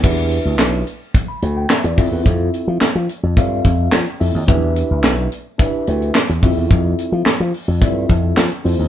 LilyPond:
<<
  \new Staff \with { instrumentName = "Tine electric piano" } { \time 4/4 \key e \phrygian \tempo 4 = 108 << { r2 r16 b''8 g''16 e''16 d''8 r16 | r1 | r1 | r1 | } \\ { <d' e' g' b' e''>4. r2 <c' e' f' a' e''>8~ | <c' e' f' a' e''>4 r4 <c' f' a' e'' f''>4 r8 <c' e' f' a' e''>8 | <d' e' g' b' e''>4. r8 <d' e' g' b' e''>4 r8 <c' e' f' a' e''>8~ | <c' e' f' a' e''>4 r4 <c' e' f' a' e''>4 r8 <c' e' f' a' c''>8 | } >> }
  \new Staff \with { instrumentName = "Slap bass" } { \clef bass \time 4/4 \key e \phrygian e,8. d,16 b,,8 r4 d,8 r16 e,16 f,16 e,16 | f,8 r16 f16 r16 f16 r16 f,16 g,8 f,8 f16 r16 f,16 dis,16 | e,8. d,16 b,,8 r4 d,8 r16 e,16 f,16 e,16 | f,8 r16 f16 r16 f16 r16 f,16 g,8 f,8 f16 r16 f,16 dis,16 | }
  \new DrumStaff \with { instrumentName = "Drums" } \drummode { \time 4/4 <cymc bd>8 hh8 <hc hh sn>8 hh8 <hh bd>8 hh8 <hc hh sn>16 hh16 <hho bd>8 | <hh bd>8 hh8 <hc hh sn>8 hh8 <hh bd>8 <hh bd>8 <hc hh sn>8 hho8 | <hh bd>8 hh8 <hc hh sn>8 hh8 <hh bd>8 hh16 hh16 <hc hh sn>16 hh16 <hho bd>8 | <hh bd>8 hh8 <hc hh sn>8 hho8 <hh bd>8 <hh bd>8 <hc hh sn>16 hh16 hho8 | }
>>